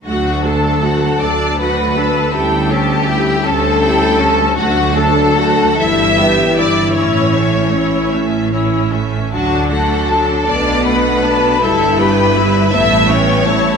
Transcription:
<<
  \new Staff \with { instrumentName = "Violin section" } { \time 6/8 \key d \major \tempo 4. = 52 fis''8 a''8 fis''8 a''8 fis''8 a''8 | g''8 a''8 g''8 a''8 g''8 a''8 | fis''8 a''8 fis''8 e''8 g''8 e''8 | cis''8 e''8 cis''8 e''8 cis''8 e''8 |
a''8 fis''8 a''8 a''8 fis''8 a''8 | e''8 g''8 e''8 a''8 g''8 a''8 | }
  \new Staff \with { instrumentName = "Violin section" } { \time 6/8 \key d \major fis'8 a'4 d''8 b'4 | a'8 g'4 a'4. | fis'8 a'4 e''4 d''8 | cis''4. r4. |
fis'8 a'4 d''8 b'4 | a'8 b'4 e''8 cis''4 | }
  \new Staff \with { instrumentName = "Viola section" } { \time 6/8 \key d \major <a fis'>8 <d' a'>8 <a fis'>8 <d' a'>8 <a fis'>8 <d' a'>8 | <e' g'>8 <cis' a'>8 <e' g'>8 <cis' a'>8 <e' g'>8 <cis' a'>8 | <a fis'>8 <d' a'>8 <a fis'>8 <g e'>8 <b g'>8 <g e'>8 | <cis' e'>8 <a cis'>8 <cis' e'>8 <a cis'>8 <cis' e'>8 <a cis'>8 |
<fis d'>8 <a fis'>8 <fis d'>8 <b d'>8 <a b>8 <b d'>8 | <g e'>8 <b g'>8 <g e'>8 <a e'>8 <b cis'>8 <a e'>8 | }
  \new Staff \with { instrumentName = "French horn section" } { \time 6/8 \key d \major <fis d'>2. | <g cis'>2. | <fis d'>4. <e e'>4.~ | <e e'>2~ <e e'>8 r8 |
<fis d'>4. <a d'>4. | <g e'>4. <g b>4. | }
  \new Staff \with { instrumentName = "Cello section" } { \clef bass \time 6/8 \key d \major d,4. d,4. | d,4. d,4. | d,4. g,4. | a,4. a,4. |
d4. b,4. | g,4. a,4. | }
  \new Staff \with { instrumentName = "Double bass section" } { \clef bass \time 6/8 \key d \major d,4. d,4. | d,4. d,4. | d,4. g,,4. | a,,4. a,,4. |
d,4. b,,4. | g,,4. a,,4. | }
>>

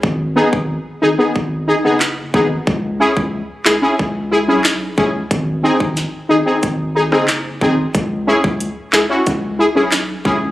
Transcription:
<<
  \new Staff \with { instrumentName = "Synth stab" } { \time 4/4 \key cis \minor \tempo 4 = 91 r8 <b dis' gis'>16 r8. <dis' gis'>16 <b dis' gis'>16 r8 <dis' gis'>16 <b dis' gis'>16 r8 <b dis' gis'>16 r16 | r8 <cis' e' gis'>16 r8. <e' gis'>16 <cis' e' gis'>16 r8 <e' gis'>16 <cis' e' gis'>16 r8 <cis' e' gis'>16 r16 | r8 <bis dis' gis'>16 r8. <dis' gis'>16 <bis dis' gis'>16 r8 <dis' gis'>16 <bis dis' gis'>16 r8 <bis dis' gis'>16 r16 | r8 <cis' e' gis'>16 r8. <e' gis'>16 <cis' e' fis'>16 r8 <e' gis'>16 <cis' e' gis'>16 r8 <cis' e' gis'>16 r16 | }
  \new Staff \with { instrumentName = "Sub bass" } { \clef bass \time 4/4 \key cis \minor gis,,8. gis,,8 r16 gis,,16 r16 gis,,8. fis,,8. gis,,8 | cis,8. cis,8 r16 cis,16 r16 cis,8. b,,8. cis,8 | gis,,8. gis,,8 r16 gis,,16 r16 gis,,8. fis,,8. gis,,8 | cis,8. cis,8 r16 cis,16 r16 cis,8. b,,8. cis,8 | }
  \new DrumStaff \with { instrumentName = "Drums" } \drummode { \time 4/4 bd8. bd16 r4 bd4 <hc sn>8 bd8 | bd8. bd16 r8 <hc sn>8 bd4 <hc sn>8 bd8 | <hh bd>8. bd16 <hh sn>4 <hh bd>8. ss16 <hc hh sn>8 bd8 | <hh bd>8. bd16 hh8 <hc sn>8 <hh bd>4 <hc hh sn>8 bd8 | }
>>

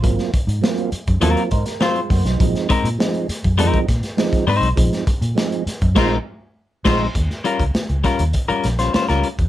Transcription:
<<
  \new Staff \with { instrumentName = "Horn section" } { \time 4/4 \key bes \dorian \tempo 4 = 101 r1 | r1 | r2 <aes f' c''>8 r4 <aes f' c''>8 | r1 | }
  \new Staff \with { instrumentName = "Clean electric guitar" } { \time 4/4 \key bes \dorian r2 <ges c' f' bes'>16 r8. <ges c' f' c''>16 r8. | r8 <aes c' ees' bes'>16 r4 r16 <aes c' ees' bes'>16 r4 r16 <aes c' ees' c''>16 r16 | r2 <aes c' ees' bes'>8 r4 <aes c' ees' c''>8 | r8 <g des' f' bes'>16 r8. <g des' f' bes'>16 r8 <g des' f' bes'>16 r16 <g des' f' c''>16 <g des' f' c''>16 <g des' f' bes'>16 r8 | }
  \new Staff \with { instrumentName = "Tonewheel organ" } { \time 4/4 \key bes \dorian r2 r8 <ees' bes' c''>16 bes'16 <c' aes' c''>16 <aes f'>16 <bes ges'>16 <ges ees'>16~ | <ges ees'>16 r2. r8. | r1 | r1 | }
  \new Staff \with { instrumentName = "Tonewheel organ" } { \time 4/4 \key bes \dorian <ges bes c' f'>8 r8 <ges bes c' f'>8 r8 <ges bes c' f'>8 r4. | <f aes c' ees'>8 r8 <f aes c' ees'>8 r8 <f aes c' ees'>8 r8 <f aes c' ees'>8 r8 | <f aes c' ees'>8 r8 <f aes c' ees'>8 r8 <f aes c' ees'>8 r4 <f aes c' ees'>8 | r1 | }
  \new Staff \with { instrumentName = "Fingered electric bass" } { \clef bass \time 4/4 \key bes \dorian aes,,16 r8 aes,16 r8. ges,16 ees,16 r16 aes,16 r8. ges,16 ces,16 | bes,,16 r8 bes,16 r8. ges,16 f,16 r16 bes,16 r8. aes,16 ces,16 | bes,,16 r8 bes,16 r8. ges,16 bes,,8 r4 bes,,8 | ees,16 r8 des,16 r16 des,16 r16 ees,16 r8 bes,,8 r16 des,16 r16 fes,16 | }
  \new DrumStaff \with { instrumentName = "Drums" } \drummode { \time 4/4 <hh bd>16 <hh sn>16 <hh bd>16 hh16 sn16 hh16 hh16 <hh bd>16 hh16 hh16 <hh bd>16 <hh sn>16 sn16 hh16 <hho bd sn>16 <hh sn>16 | <hh bd>16 <hh sn>16 <hh bd>16 hh16 sn16 hh16 <hh sn>16 <hh bd>16 hh16 <hh bd>16 <hh bd sn>16 <hh sn>16 sn16 <hh bd sn>16 hho16 hh16 | <hh bd>16 <hh sn>16 <hh bd>16 hh16 sn16 hh16 <hh sn>16 <hh bd>16 <cymc bd sn>4 r8 <cymc bd sn>8 | <hh bd>16 sn16 hh16 <hh bd>16 sn16 hh16 <hh bd sn>16 hh16 <hh bd>16 hh16 <hh sn>16 <hh sn>16 sn16 <hh sn>16 hh16 <hh bd>16 | }
>>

